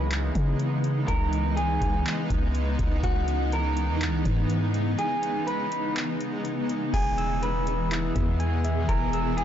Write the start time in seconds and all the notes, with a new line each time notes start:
Already playing: C#2 C#3 E3 G#3 B3 D#4
0.11 clap, closed hi-hat
0.35 C#3, kick, closed hi-hat
0.59 closed hi-hat
0.84 closed hi-hat
1.08 C#2 A#4, kick, closed hi-hat
1.33 closed hi-hat
1.57 G#4, closed hi-hat
1.82 C#2, kick, closed hi-hat
2.06 clap, closed hi-hat
2.30 C#2, kick, closed hi-hat
2.55 closed hi-hat
2.79 C#2, kick, closed hi-hat
3.03 C#2 F#4, kick, closed hi-hat
3.28 closed hi-hat
3.52 A#4, closed hi-hat
3.77 closed hi-hat
3.89 E2
4.01 clap, closed hi-hat
4.07 C#2
4.25 G#2, kick, closed hi-hat
4.50 closed hi-hat
4.74 closed hi-hat
4.99 G#4, closed hi-hat
5.23 closed hi-hat
5.47 B4, closed hi-hat
5.72 closed hi-hat
5.96 clap, closed hi-hat
6.21 closed hi-hat
6.45 closed hi-hat
6.69 closed hi-hat
6.94 E1 B2 E3 G#3 B3 G#4 G#5, kick, closed hi-hat, crash
7.18 E6, closed hi-hat
7.43 B4, closed hi-hat
7.67 closed hi-hat
7.91 E4, clap, closed hi-hat
8.16 E2 B3, kick, closed hi-hat
8.40 G#5, closed hi-hat
8.64 E5, closed hi-hat
8.89 E1 A#4 G#5, kick, closed hi-hat
9.13 E6, closed hi-hat
9.37 G#4, closed hi-hat